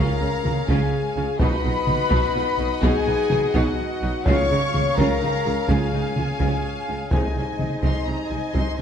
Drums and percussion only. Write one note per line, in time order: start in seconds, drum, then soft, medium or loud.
0.45 taiko mid medium
0.68 taiko medium
1.40 taiko medium
1.87 taiko mid medium
2.11 taiko medium
2.83 taiko medium
3.30 taiko mid medium
3.54 taiko medium
4.26 taiko loud
4.74 taiko mid medium
4.98 taiko medium
5.69 taiko medium
6.16 taiko mid medium
6.40 taiko medium
7.11 taiko medium
7.59 taiko mid medium
7.83 taiko medium
8.55 taiko medium